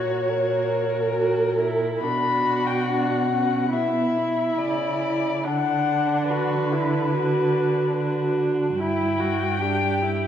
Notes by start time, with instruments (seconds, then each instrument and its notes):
Already playing: cello A#2, violin F#4 C#5, viola F#4
0.29 violin A#4
1.17 viola F#4
1.59 viola E4
2.00 cello B2, viola D4, violin F#4 B5
2.67 violin G5
2.87 viola D4, violin F#5
3.31 viola C#4
3.72 viola B3, violin E4 E5
4.17 viola E4
4.59 cello C#3, violin D5
5.43 cello D3, viola D4, violin D4 F#5
6.30 violin F#4 B4
6.72 violin E4
7.14 violin D4, viola F#4
7.97 violin D4, viola F#4
8.79 cello G2, viola E4, violin E4 G5
9.20 violin F#4
9.61 viola D4, violin G4
10.02 viola E4